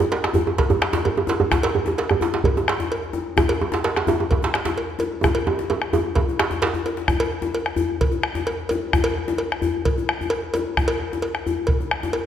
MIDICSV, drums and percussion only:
0, 0, Header, 1, 4, 480
1, 0, Start_track
1, 0, Tempo, 465839
1, 1564, Time_signature, 4, 2, 24, 8
1, 6357, Tempo, 459418
1, 12720, End_track
2, 0, Start_track
2, 0, Title_t, "Bombo"
2, 5, Note_on_c, 9, 37, 28
2, 108, Note_off_c, 9, 37, 0
2, 129, Note_on_c, 9, 37, 29
2, 232, Note_off_c, 9, 37, 0
2, 247, Note_on_c, 9, 37, 73
2, 350, Note_off_c, 9, 37, 0
2, 607, Note_on_c, 9, 43, 95
2, 710, Note_off_c, 9, 43, 0
2, 845, Note_on_c, 9, 37, 94
2, 948, Note_off_c, 9, 37, 0
2, 1561, Note_on_c, 9, 37, 92
2, 1561, Note_on_c, 9, 43, 100
2, 1665, Note_off_c, 9, 37, 0
2, 1665, Note_off_c, 9, 43, 0
2, 1685, Note_on_c, 9, 37, 31
2, 1788, Note_off_c, 9, 37, 0
2, 1925, Note_on_c, 9, 37, 33
2, 2028, Note_off_c, 9, 37, 0
2, 2038, Note_on_c, 9, 37, 33
2, 2141, Note_off_c, 9, 37, 0
2, 2158, Note_on_c, 9, 37, 78
2, 2262, Note_off_c, 9, 37, 0
2, 2513, Note_on_c, 9, 43, 104
2, 2616, Note_off_c, 9, 43, 0
2, 2762, Note_on_c, 9, 37, 102
2, 2865, Note_off_c, 9, 37, 0
2, 3479, Note_on_c, 9, 37, 96
2, 3479, Note_on_c, 9, 43, 93
2, 3582, Note_off_c, 9, 37, 0
2, 3582, Note_off_c, 9, 43, 0
2, 3606, Note_on_c, 9, 37, 29
2, 3709, Note_off_c, 9, 37, 0
2, 3850, Note_on_c, 9, 37, 32
2, 3953, Note_off_c, 9, 37, 0
2, 3963, Note_on_c, 9, 37, 31
2, 4066, Note_off_c, 9, 37, 0
2, 4085, Note_on_c, 9, 37, 78
2, 4188, Note_off_c, 9, 37, 0
2, 4444, Note_on_c, 9, 43, 101
2, 4547, Note_off_c, 9, 43, 0
2, 4677, Note_on_c, 9, 37, 100
2, 4780, Note_off_c, 9, 37, 0
2, 5400, Note_on_c, 9, 37, 92
2, 5400, Note_on_c, 9, 43, 95
2, 5503, Note_off_c, 9, 37, 0
2, 5503, Note_off_c, 9, 43, 0
2, 5525, Note_on_c, 9, 37, 31
2, 5628, Note_off_c, 9, 37, 0
2, 5635, Note_on_c, 9, 37, 32
2, 5738, Note_off_c, 9, 37, 0
2, 5993, Note_on_c, 9, 37, 80
2, 6096, Note_off_c, 9, 37, 0
2, 6351, Note_on_c, 9, 37, 32
2, 6351, Note_on_c, 9, 43, 97
2, 6455, Note_off_c, 9, 37, 0
2, 6455, Note_off_c, 9, 43, 0
2, 6592, Note_on_c, 9, 37, 96
2, 6697, Note_off_c, 9, 37, 0
2, 6720, Note_on_c, 9, 37, 31
2, 6825, Note_off_c, 9, 37, 0
2, 7201, Note_on_c, 9, 37, 31
2, 7305, Note_off_c, 9, 37, 0
2, 7308, Note_on_c, 9, 37, 100
2, 7308, Note_on_c, 9, 43, 95
2, 7413, Note_off_c, 9, 37, 0
2, 7413, Note_off_c, 9, 43, 0
2, 7437, Note_on_c, 9, 37, 33
2, 7542, Note_off_c, 9, 37, 0
2, 7673, Note_on_c, 9, 37, 33
2, 7778, Note_off_c, 9, 37, 0
2, 7796, Note_on_c, 9, 37, 35
2, 7900, Note_off_c, 9, 37, 0
2, 7914, Note_on_c, 9, 37, 90
2, 8018, Note_off_c, 9, 37, 0
2, 8283, Note_on_c, 9, 43, 108
2, 8388, Note_off_c, 9, 43, 0
2, 8514, Note_on_c, 9, 37, 115
2, 8619, Note_off_c, 9, 37, 0
2, 9244, Note_on_c, 9, 37, 110
2, 9244, Note_on_c, 9, 43, 107
2, 9349, Note_off_c, 9, 37, 0
2, 9349, Note_off_c, 9, 43, 0
2, 9372, Note_on_c, 9, 37, 35
2, 9476, Note_off_c, 9, 37, 0
2, 9620, Note_on_c, 9, 37, 34
2, 9724, Note_off_c, 9, 37, 0
2, 9731, Note_on_c, 9, 37, 35
2, 9836, Note_off_c, 9, 37, 0
2, 9858, Note_on_c, 9, 37, 93
2, 9963, Note_off_c, 9, 37, 0
2, 10210, Note_on_c, 9, 43, 106
2, 10315, Note_off_c, 9, 43, 0
2, 10453, Note_on_c, 9, 37, 106
2, 10557, Note_off_c, 9, 37, 0
2, 11166, Note_on_c, 9, 37, 106
2, 11166, Note_on_c, 9, 43, 106
2, 11271, Note_off_c, 9, 37, 0
2, 11271, Note_off_c, 9, 43, 0
2, 11527, Note_on_c, 9, 37, 36
2, 11632, Note_off_c, 9, 37, 0
2, 11645, Note_on_c, 9, 37, 35
2, 11750, Note_off_c, 9, 37, 0
2, 11766, Note_on_c, 9, 37, 85
2, 11871, Note_off_c, 9, 37, 0
2, 12118, Note_on_c, 9, 43, 109
2, 12223, Note_off_c, 9, 43, 0
2, 12358, Note_on_c, 9, 37, 101
2, 12463, Note_off_c, 9, 37, 0
2, 12720, End_track
3, 0, Start_track
3, 0, Title_t, "Djembe"
3, 0, Note_on_c, 9, 62, 67
3, 0, Note_on_c, 9, 63, 63
3, 0, Note_on_c, 9, 64, 92
3, 100, Note_off_c, 9, 64, 0
3, 103, Note_off_c, 9, 62, 0
3, 103, Note_off_c, 9, 63, 0
3, 115, Note_on_c, 9, 62, 26
3, 123, Note_off_c, 9, 62, 0
3, 123, Note_on_c, 9, 62, 76
3, 226, Note_off_c, 9, 62, 0
3, 249, Note_on_c, 9, 62, 81
3, 347, Note_on_c, 9, 64, 78
3, 352, Note_off_c, 9, 62, 0
3, 362, Note_off_c, 9, 64, 0
3, 362, Note_on_c, 9, 64, 75
3, 465, Note_off_c, 9, 64, 0
3, 484, Note_on_c, 9, 63, 74
3, 587, Note_off_c, 9, 63, 0
3, 601, Note_on_c, 9, 62, 78
3, 704, Note_off_c, 9, 62, 0
3, 719, Note_on_c, 9, 62, 25
3, 719, Note_on_c, 9, 63, 59
3, 723, Note_on_c, 9, 64, 97
3, 822, Note_off_c, 9, 62, 0
3, 822, Note_off_c, 9, 63, 0
3, 826, Note_off_c, 9, 64, 0
3, 842, Note_on_c, 9, 62, 84
3, 945, Note_off_c, 9, 62, 0
3, 960, Note_on_c, 9, 62, 60
3, 960, Note_on_c, 9, 64, 65
3, 961, Note_off_c, 9, 62, 0
3, 961, Note_on_c, 9, 62, 78
3, 1063, Note_off_c, 9, 64, 0
3, 1064, Note_off_c, 9, 62, 0
3, 1078, Note_on_c, 9, 62, 24
3, 1089, Note_on_c, 9, 64, 80
3, 1181, Note_off_c, 9, 62, 0
3, 1192, Note_off_c, 9, 64, 0
3, 1193, Note_on_c, 9, 62, 24
3, 1211, Note_on_c, 9, 63, 85
3, 1296, Note_off_c, 9, 62, 0
3, 1309, Note_off_c, 9, 63, 0
3, 1309, Note_on_c, 9, 62, 24
3, 1309, Note_on_c, 9, 63, 79
3, 1334, Note_off_c, 9, 62, 0
3, 1334, Note_on_c, 9, 62, 79
3, 1412, Note_off_c, 9, 63, 0
3, 1437, Note_off_c, 9, 62, 0
3, 1442, Note_on_c, 9, 64, 100
3, 1545, Note_off_c, 9, 64, 0
3, 1555, Note_on_c, 9, 64, 78
3, 1566, Note_on_c, 9, 62, 83
3, 1659, Note_off_c, 9, 64, 0
3, 1669, Note_off_c, 9, 62, 0
3, 1679, Note_on_c, 9, 62, 24
3, 1692, Note_off_c, 9, 62, 0
3, 1692, Note_on_c, 9, 62, 76
3, 1795, Note_off_c, 9, 62, 0
3, 1804, Note_on_c, 9, 64, 75
3, 1907, Note_off_c, 9, 64, 0
3, 1915, Note_on_c, 9, 62, 61
3, 1915, Note_on_c, 9, 63, 61
3, 1933, Note_off_c, 9, 63, 0
3, 1933, Note_on_c, 9, 63, 71
3, 2018, Note_off_c, 9, 62, 0
3, 2036, Note_off_c, 9, 63, 0
3, 2042, Note_on_c, 9, 62, 25
3, 2047, Note_off_c, 9, 62, 0
3, 2047, Note_on_c, 9, 62, 76
3, 2150, Note_off_c, 9, 62, 0
3, 2172, Note_on_c, 9, 64, 96
3, 2275, Note_off_c, 9, 64, 0
3, 2278, Note_on_c, 9, 64, 74
3, 2290, Note_on_c, 9, 62, 77
3, 2381, Note_off_c, 9, 64, 0
3, 2393, Note_off_c, 9, 62, 0
3, 2409, Note_on_c, 9, 62, 78
3, 2512, Note_off_c, 9, 62, 0
3, 2516, Note_on_c, 9, 64, 82
3, 2619, Note_off_c, 9, 64, 0
3, 2646, Note_on_c, 9, 62, 23
3, 2646, Note_on_c, 9, 63, 61
3, 2650, Note_off_c, 9, 63, 0
3, 2650, Note_on_c, 9, 63, 77
3, 2749, Note_off_c, 9, 62, 0
3, 2753, Note_off_c, 9, 63, 0
3, 2774, Note_on_c, 9, 62, 85
3, 2877, Note_off_c, 9, 62, 0
3, 2884, Note_on_c, 9, 62, 65
3, 2884, Note_on_c, 9, 64, 63
3, 2987, Note_off_c, 9, 62, 0
3, 2987, Note_off_c, 9, 64, 0
3, 2996, Note_on_c, 9, 62, 26
3, 3099, Note_off_c, 9, 62, 0
3, 3121, Note_on_c, 9, 62, 27
3, 3224, Note_off_c, 9, 62, 0
3, 3228, Note_on_c, 9, 62, 27
3, 3228, Note_on_c, 9, 63, 86
3, 3331, Note_off_c, 9, 62, 0
3, 3331, Note_off_c, 9, 63, 0
3, 3469, Note_on_c, 9, 64, 82
3, 3478, Note_on_c, 9, 63, 103
3, 3572, Note_off_c, 9, 64, 0
3, 3581, Note_off_c, 9, 63, 0
3, 3605, Note_on_c, 9, 63, 76
3, 3708, Note_off_c, 9, 63, 0
3, 3724, Note_on_c, 9, 63, 82
3, 3827, Note_off_c, 9, 63, 0
3, 3832, Note_on_c, 9, 62, 65
3, 3832, Note_on_c, 9, 63, 63
3, 3849, Note_off_c, 9, 62, 0
3, 3849, Note_on_c, 9, 62, 73
3, 3935, Note_off_c, 9, 63, 0
3, 3953, Note_off_c, 9, 62, 0
3, 3955, Note_on_c, 9, 62, 27
3, 3961, Note_off_c, 9, 62, 0
3, 3961, Note_on_c, 9, 62, 79
3, 4064, Note_off_c, 9, 62, 0
3, 4090, Note_on_c, 9, 62, 76
3, 4193, Note_off_c, 9, 62, 0
3, 4195, Note_on_c, 9, 64, 82
3, 4207, Note_on_c, 9, 63, 107
3, 4298, Note_off_c, 9, 64, 0
3, 4310, Note_off_c, 9, 63, 0
3, 4331, Note_on_c, 9, 63, 72
3, 4434, Note_off_c, 9, 63, 0
3, 4452, Note_on_c, 9, 63, 80
3, 4555, Note_off_c, 9, 63, 0
3, 4557, Note_on_c, 9, 62, 25
3, 4557, Note_on_c, 9, 63, 63
3, 4575, Note_off_c, 9, 62, 0
3, 4575, Note_on_c, 9, 62, 82
3, 4660, Note_off_c, 9, 63, 0
3, 4678, Note_off_c, 9, 62, 0
3, 4689, Note_on_c, 9, 62, 81
3, 4792, Note_off_c, 9, 62, 0
3, 4795, Note_on_c, 9, 62, 67
3, 4795, Note_on_c, 9, 64, 68
3, 4898, Note_off_c, 9, 62, 0
3, 4898, Note_off_c, 9, 64, 0
3, 4911, Note_on_c, 9, 62, 26
3, 5015, Note_off_c, 9, 62, 0
3, 5037, Note_on_c, 9, 62, 28
3, 5139, Note_off_c, 9, 62, 0
3, 5139, Note_on_c, 9, 62, 27
3, 5139, Note_on_c, 9, 63, 83
3, 5242, Note_off_c, 9, 62, 0
3, 5242, Note_off_c, 9, 63, 0
3, 5390, Note_on_c, 9, 64, 83
3, 5400, Note_on_c, 9, 63, 105
3, 5493, Note_off_c, 9, 64, 0
3, 5503, Note_off_c, 9, 63, 0
3, 5636, Note_on_c, 9, 63, 102
3, 5739, Note_off_c, 9, 63, 0
3, 5758, Note_on_c, 9, 62, 63
3, 5758, Note_on_c, 9, 63, 61
3, 5862, Note_off_c, 9, 62, 0
3, 5862, Note_off_c, 9, 63, 0
3, 5877, Note_on_c, 9, 63, 99
3, 5880, Note_on_c, 9, 62, 25
3, 5980, Note_off_c, 9, 63, 0
3, 5983, Note_off_c, 9, 62, 0
3, 6111, Note_on_c, 9, 64, 75
3, 6114, Note_on_c, 9, 63, 103
3, 6214, Note_off_c, 9, 64, 0
3, 6217, Note_off_c, 9, 63, 0
3, 6346, Note_on_c, 9, 63, 98
3, 6450, Note_off_c, 9, 63, 0
3, 6479, Note_on_c, 9, 63, 54
3, 6583, Note_off_c, 9, 63, 0
3, 6593, Note_on_c, 9, 62, 100
3, 6698, Note_off_c, 9, 62, 0
3, 6709, Note_on_c, 9, 62, 57
3, 6709, Note_on_c, 9, 64, 56
3, 6814, Note_off_c, 9, 62, 0
3, 6814, Note_off_c, 9, 64, 0
3, 6829, Note_on_c, 9, 64, 43
3, 6831, Note_on_c, 9, 62, 106
3, 6933, Note_off_c, 9, 64, 0
3, 6936, Note_off_c, 9, 62, 0
3, 6950, Note_on_c, 9, 64, 52
3, 7055, Note_off_c, 9, 64, 0
3, 7075, Note_on_c, 9, 62, 58
3, 7179, Note_off_c, 9, 62, 0
3, 7194, Note_on_c, 9, 62, 65
3, 7299, Note_off_c, 9, 62, 0
3, 7311, Note_on_c, 9, 64, 78
3, 7415, Note_off_c, 9, 64, 0
3, 7429, Note_on_c, 9, 62, 26
3, 7534, Note_off_c, 9, 62, 0
3, 7664, Note_on_c, 9, 62, 67
3, 7664, Note_on_c, 9, 63, 67
3, 7769, Note_off_c, 9, 62, 0
3, 7769, Note_off_c, 9, 63, 0
3, 7787, Note_on_c, 9, 62, 27
3, 7892, Note_off_c, 9, 62, 0
3, 8023, Note_on_c, 9, 64, 84
3, 8128, Note_off_c, 9, 64, 0
3, 8389, Note_on_c, 9, 62, 26
3, 8389, Note_on_c, 9, 63, 65
3, 8493, Note_off_c, 9, 62, 0
3, 8493, Note_off_c, 9, 63, 0
3, 8636, Note_on_c, 9, 62, 71
3, 8636, Note_on_c, 9, 64, 70
3, 8740, Note_off_c, 9, 62, 0
3, 8740, Note_off_c, 9, 64, 0
3, 8763, Note_on_c, 9, 62, 27
3, 8868, Note_off_c, 9, 62, 0
3, 8890, Note_on_c, 9, 62, 30
3, 8994, Note_off_c, 9, 62, 0
3, 9009, Note_on_c, 9, 62, 28
3, 9009, Note_on_c, 9, 63, 88
3, 9114, Note_off_c, 9, 62, 0
3, 9114, Note_off_c, 9, 63, 0
3, 9247, Note_on_c, 9, 64, 86
3, 9352, Note_off_c, 9, 64, 0
3, 9368, Note_on_c, 9, 62, 29
3, 9472, Note_off_c, 9, 62, 0
3, 9607, Note_on_c, 9, 62, 69
3, 9607, Note_on_c, 9, 63, 67
3, 9711, Note_off_c, 9, 62, 0
3, 9711, Note_off_c, 9, 63, 0
3, 9723, Note_on_c, 9, 62, 29
3, 9828, Note_off_c, 9, 62, 0
3, 9960, Note_on_c, 9, 64, 79
3, 10065, Note_off_c, 9, 64, 0
3, 10338, Note_on_c, 9, 62, 23
3, 10338, Note_on_c, 9, 63, 58
3, 10442, Note_off_c, 9, 62, 0
3, 10442, Note_off_c, 9, 63, 0
3, 10578, Note_on_c, 9, 64, 60
3, 10683, Note_off_c, 9, 64, 0
3, 10685, Note_on_c, 9, 62, 23
3, 10790, Note_off_c, 9, 62, 0
3, 10816, Note_on_c, 9, 62, 22
3, 10921, Note_off_c, 9, 62, 0
3, 10932, Note_on_c, 9, 62, 22
3, 10932, Note_on_c, 9, 63, 71
3, 11037, Note_off_c, 9, 62, 0
3, 11037, Note_off_c, 9, 63, 0
3, 11171, Note_on_c, 9, 64, 66
3, 11276, Note_off_c, 9, 64, 0
3, 11302, Note_on_c, 9, 62, 21
3, 11407, Note_off_c, 9, 62, 0
3, 11540, Note_on_c, 9, 62, 57
3, 11540, Note_on_c, 9, 63, 53
3, 11644, Note_off_c, 9, 62, 0
3, 11644, Note_off_c, 9, 63, 0
3, 11661, Note_on_c, 9, 62, 24
3, 11766, Note_off_c, 9, 62, 0
3, 11890, Note_on_c, 9, 64, 72
3, 11995, Note_off_c, 9, 64, 0
3, 12244, Note_on_c, 9, 62, 22
3, 12244, Note_on_c, 9, 63, 54
3, 12349, Note_off_c, 9, 62, 0
3, 12349, Note_off_c, 9, 63, 0
3, 12483, Note_on_c, 9, 62, 61
3, 12483, Note_on_c, 9, 64, 62
3, 12588, Note_off_c, 9, 62, 0
3, 12588, Note_off_c, 9, 64, 0
3, 12601, Note_on_c, 9, 62, 25
3, 12705, Note_off_c, 9, 62, 0
3, 12720, End_track
4, 0, Start_track
4, 0, Title_t, "Drums"
4, 121, Note_on_c, 9, 56, 50
4, 224, Note_off_c, 9, 56, 0
4, 604, Note_on_c, 9, 56, 48
4, 707, Note_off_c, 9, 56, 0
4, 1083, Note_on_c, 9, 56, 48
4, 1186, Note_off_c, 9, 56, 0
4, 1330, Note_on_c, 9, 56, 43
4, 1433, Note_off_c, 9, 56, 0
4, 1683, Note_on_c, 9, 56, 56
4, 1786, Note_off_c, 9, 56, 0
4, 2043, Note_on_c, 9, 56, 46
4, 2146, Note_off_c, 9, 56, 0
4, 2526, Note_on_c, 9, 56, 49
4, 2629, Note_off_c, 9, 56, 0
4, 3005, Note_on_c, 9, 56, 51
4, 3109, Note_off_c, 9, 56, 0
4, 3598, Note_on_c, 9, 56, 58
4, 3701, Note_off_c, 9, 56, 0
4, 3960, Note_on_c, 9, 56, 47
4, 4063, Note_off_c, 9, 56, 0
4, 4437, Note_on_c, 9, 56, 48
4, 4540, Note_off_c, 9, 56, 0
4, 4921, Note_on_c, 9, 56, 50
4, 5024, Note_off_c, 9, 56, 0
4, 5150, Note_on_c, 9, 56, 47
4, 5253, Note_off_c, 9, 56, 0
4, 5510, Note_on_c, 9, 56, 60
4, 5613, Note_off_c, 9, 56, 0
4, 5871, Note_on_c, 9, 56, 48
4, 5974, Note_off_c, 9, 56, 0
4, 6342, Note_on_c, 9, 56, 50
4, 6446, Note_off_c, 9, 56, 0
4, 6827, Note_on_c, 9, 56, 50
4, 6931, Note_off_c, 9, 56, 0
4, 7076, Note_on_c, 9, 56, 47
4, 7181, Note_off_c, 9, 56, 0
4, 7434, Note_on_c, 9, 56, 69
4, 7538, Note_off_c, 9, 56, 0
4, 7794, Note_on_c, 9, 56, 58
4, 7899, Note_off_c, 9, 56, 0
4, 8280, Note_on_c, 9, 56, 61
4, 8384, Note_off_c, 9, 56, 0
4, 8758, Note_on_c, 9, 56, 63
4, 8863, Note_off_c, 9, 56, 0
4, 8993, Note_on_c, 9, 56, 62
4, 9097, Note_off_c, 9, 56, 0
4, 9355, Note_on_c, 9, 56, 74
4, 9459, Note_off_c, 9, 56, 0
4, 9715, Note_on_c, 9, 56, 63
4, 9820, Note_off_c, 9, 56, 0
4, 10207, Note_on_c, 9, 56, 61
4, 10311, Note_off_c, 9, 56, 0
4, 10673, Note_on_c, 9, 56, 68
4, 10778, Note_off_c, 9, 56, 0
4, 10919, Note_on_c, 9, 56, 62
4, 11024, Note_off_c, 9, 56, 0
4, 11276, Note_on_c, 9, 56, 75
4, 11381, Note_off_c, 9, 56, 0
4, 11637, Note_on_c, 9, 56, 58
4, 11742, Note_off_c, 9, 56, 0
4, 12102, Note_on_c, 9, 56, 57
4, 12207, Note_off_c, 9, 56, 0
4, 12586, Note_on_c, 9, 56, 61
4, 12691, Note_off_c, 9, 56, 0
4, 12720, End_track
0, 0, End_of_file